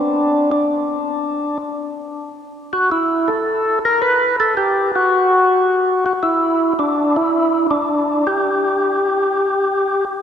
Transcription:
0.00 0.50 D4 medium
0.52 1.58 D4 medium
2.73 2.90 F#4 medium
2.91 3.30 E4 medium
3.28 3.79 A4 medium
3.85 4.01 A#4 medium
4.02 4.36 B4 loud
4.40 4.55 A4 medium
4.57 4.92 G4 medium
4.96 6.05 F#4 medium
6.06 6.13 F#4 medium
6.23 6.73 E4 medium
6.79 7.17 D4 medium
7.16 7.67 E4 medium
7.71 8.27 D4 medium
8.27 10.05 G4 medium

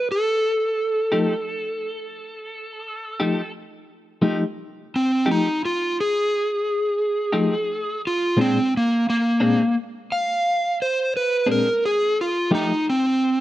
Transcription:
0.12 3.51 A4 medium
1.12 1.33 F3 medium
1.12 1.33 A3 medium
1.12 1.33 D#4 medium
1.12 1.33 G4 medium
3.20 3.41 F3 medium
3.20 3.41 A3 medium
3.20 3.40 D#4 medium
3.20 3.40 G4 medium
4.22 4.43 F3 medium
4.22 4.43 A3 medium
4.22 4.44 D#4 medium
4.22 4.44 G4 medium
4.96 5.27 C4 medium
5.26 5.48 F3 medium
5.26 5.47 A3 medium
5.26 5.47 D#4 medium
5.26 5.47 G4 medium
5.31 5.62 D#4 medium
5.65 5.97 F4 medium
6.01 8.01 G#4 medium
7.32 7.54 F3 medium
7.32 7.54 A3 medium
7.32 7.54 D#4 medium
7.32 7.54 G4 medium
8.07 8.38 F4 medium
8.37 8.58 A#2 medium
8.37 8.58 G#3 medium
8.37 8.58 C4 medium
8.37 8.58 D4 medium
8.41 8.73 C4 medium
8.77 9.08 A#3 medium
9.10 9.75 A#3 medium
9.40 9.62 A#2 medium
9.40 9.61 G#3 medium
9.40 9.61 C4 medium
9.40 9.61 D4 medium
10.12 10.78 F5 medium
10.82 11.14 C5 medium
11.17 11.48 B4 medium
11.46 11.68 A#2 medium
11.46 11.68 G#3 medium
11.46 11.68 C4 medium
11.46 11.67 D4 medium
11.51 11.83 A#4 medium
11.86 12.17 G#4 medium
12.21 12.52 F4 medium
12.51 12.71 F3 medium
12.51 12.72 A3 medium
12.51 12.72 D#4 medium
12.51 12.86 D#4 medium
12.51 12.72 G4 medium
12.90 13.40 C4 medium

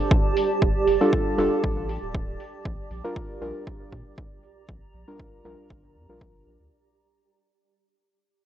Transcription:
0.00 0.98 G3 medium
0.00 0.98 D4 medium
0.00 0.98 F4 medium
0.00 6.72 G4 medium
0.00 0.98 A4 loud
0.00 6.72 D5 medium
0.00 2.40 A5 medium
0.11 kick loud
0.37 open hi-hat loud
0.62 0.73 F1 loud
0.62 kick loud
0.87 0.98 F1 medium
0.87 open hi-hat loud
1.01 1.35 G3 medium
1.01 1.35 D4 medium
1.01 1.35 F4 medium
1.01 1.35 A4 medium
1.01 open hi-hat medium
1.13 kick loud
1.38 1.49 F1 loud
1.38 2.38 G3 medium
1.38 2.38 D4 medium
1.38 2.38 F4 medium
1.38 2.39 A4 loud
1.38 open hi-hat medium
1.64 1.98 A1 loud
1.64 kick loud
1.89 open hi-hat medium
2.03 2.36 D1 medium
2.15 kick loud
2.40 open hi-hat medium
2.65 2.76 A#1 loud
2.65 kick loud
2.91 3.01 A#1 medium
2.91 open hi-hat medium
3.04 3.39 G3 medium
3.04 3.39 D4 medium
3.04 3.39 F4 medium
3.04 3.39 A#4 medium
3.04 open hi-hat medium
3.16 kick loud
3.41 3.52 A#1 loud
3.41 5.04 G3 medium
3.41 5.04 D4 medium
3.41 5.04 F4 medium
3.41 5.04 A#4 loud
3.41 open hi-hat medium
3.67 6.72 A#5 medium
3.67 kick loud
3.92 4.03 A#2 medium
3.92 kick medium
3.92 open hi-hat medium
4.18 kick loud
4.43 open hi-hat medium
4.69 4.79 A#1 loud
4.69 kick loud
4.94 5.05 A#1 medium
4.94 open hi-hat medium
5.08 5.42 G3 medium
5.08 5.42 D4 medium
5.08 5.42 F4 medium
5.08 5.42 A#4 medium
5.20 kick loud
5.45 5.55 A#1 loud
5.45 6.07 G3 medium
5.45 6.07 D4 medium
5.45 6.07 F4 medium
5.45 6.07 A#4 loud
5.45 open hi-hat medium
5.70 5.97 G1 loud
5.70 kick loud
5.96 6.06 F2 loud
6.09 6.34 A#1 medium
6.09 6.71 G3 medium
6.09 6.71 D4 medium
6.09 6.71 F4 medium
6.09 6.71 A#4 medium
6.21 kick loud
6.35 6.44 G1 medium
6.47 6.57 A#1 medium
6.47 open hi-hat loud
6.60 6.69 D2 medium

